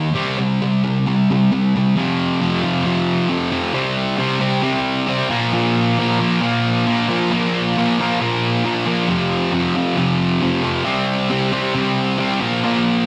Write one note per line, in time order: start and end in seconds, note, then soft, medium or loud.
0.00 0.14 D#3 medium
0.00 0.15 A#3 medium
0.14 0.37 C3 loud
0.14 0.37 G3 loud
0.14 0.38 C4 loud
0.38 0.60 C3 medium
0.38 0.60 G3 medium
0.62 0.83 C3 medium
0.62 0.83 G3 medium
0.84 1.05 C3 medium
0.84 1.05 G3 medium
1.06 1.28 C3 medium
1.06 1.28 G3 medium
1.30 1.51 C3 medium
1.30 1.51 G3 medium
1.52 1.73 C3 medium
1.52 1.73 G3 medium
1.75 1.95 C3 medium
1.75 1.96 G3 medium
1.96 2.41 F2 loud
1.96 2.41 C3 loud
1.96 2.41 F3 loud
2.42 2.62 F2 medium
2.42 2.63 C3 medium
2.42 2.63 F3 loud
2.64 2.84 F2 medium
2.64 2.85 C3 medium
2.64 2.85 F3 medium
2.85 3.28 F2 medium
2.85 3.28 C3 loud
2.85 3.28 F3 loud
3.29 3.51 F2 medium
3.29 3.51 C3 medium
3.29 3.51 F3 medium
3.52 3.74 F2 medium
3.52 3.73 C3 medium
3.52 3.74 F3 medium
3.74 4.16 C3 loud
3.74 4.18 G3 loud
3.74 4.18 C4 loud
4.17 4.39 C3 medium
4.17 4.39 G3 medium
4.17 4.40 C4 loud
4.40 4.61 C3 medium
4.40 4.62 G3 medium
4.40 4.63 C4 medium
4.62 5.06 C3 loud
4.62 5.07 G3 loud
4.62 5.07 C4 loud
5.07 5.29 C3 medium
5.07 5.29 G3 medium
5.07 5.30 C4 medium
5.30 5.53 A#2 medium
5.30 5.53 F3 loud
5.30 5.54 A#3 loud
5.53 5.98 A#2 loud
5.53 5.99 F3 loud
5.53 5.99 A#3 loud
5.98 6.19 A#2 medium
5.98 6.20 F3 loud
5.98 6.21 A#3 medium
6.20 6.40 A#2 medium
6.20 6.41 F3 medium
6.20 6.41 A#3 medium
6.41 6.86 A#2 loud
6.41 6.87 F3 loud
6.41 6.86 A#3 loud
6.87 7.08 A#2 medium
6.87 7.09 F3 medium
6.87 7.09 A#3 medium
7.09 7.30 A#2 medium
7.09 7.32 F3 medium
7.09 7.32 A#3 medium
7.31 7.76 A#2 loud
7.31 7.78 F3 loud
7.31 7.77 A#3 loud
7.77 7.99 A#2 medium
7.77 8.00 F3 medium
7.77 8.00 A#3 loud
8.00 8.19 A#2 medium
8.00 8.20 F3 medium
8.00 8.21 A#3 medium
8.20 8.63 A#2 loud
8.20 8.63 F3 loud
8.20 8.64 A#3 loud
8.65 8.85 A#2 medium
8.65 8.85 F3 medium
8.65 8.86 A#3 loud
8.86 9.08 A#2 medium
8.86 9.08 F3 medium
8.86 9.08 A#3 medium
9.08 9.51 F2 medium
9.08 9.52 C3 medium
9.08 9.52 F3 loud
9.52 9.74 F2 medium
9.52 9.75 C3 medium
9.52 9.75 F3 medium
9.75 9.96 F2 medium
9.75 9.97 C3 medium
9.75 9.97 F3 loud
9.97 10.41 F2 loud
9.97 10.41 C3 loud
9.97 10.42 F3 loud
10.42 10.62 F2 medium
10.42 10.63 C3 medium
10.42 10.63 F3 medium
10.63 10.85 F2 medium
10.63 10.83 C3 medium
10.63 10.85 F3 medium
10.84 11.29 C3 loud
10.84 11.30 G3 loud
10.84 11.30 C4 loud
11.30 11.51 C3 medium
11.30 11.52 G3 medium
11.30 11.52 C4 loud
11.52 11.73 C3 medium
11.52 11.74 G3 medium
11.52 11.74 C4 medium
11.74 12.17 C3 loud
11.74 12.18 G3 loud
11.74 12.19 C4 loud
12.18 12.40 C3 medium
12.18 12.40 G3 medium
12.18 12.41 C4 loud
12.41 12.63 A#2 loud
12.41 12.64 F3 loud
12.41 12.64 A#3 medium
12.64 13.06 A#2 loud
12.64 13.06 F3 loud
12.64 13.06 A#3 loud